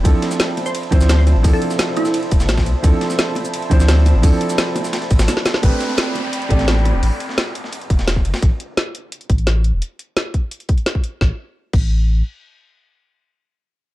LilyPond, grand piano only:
\new Staff \with { instrumentName = "Grand piano" } { \time 4/4 \key d \dorian \tempo 4 = 172 <f c' d' e' a'>2~ <f c' d' e' a'>8 <f c' d' e' c''>4. | <f c' d' e' a'>2.~ <f c' d' e' a'>8 r8 | <f c' d' e' a'>2~ <f c' d' e' a'>8 <f c' d' e' c''>4. | <f c' d' e' a'>2.~ <f c' d' e' a'>8 r8 |
<a c' d' g' b'>2~ <a c' d' g' b'>8 <a c' d' g' d''>4. | r1 | r1 | r1 |
r1 | r1 | }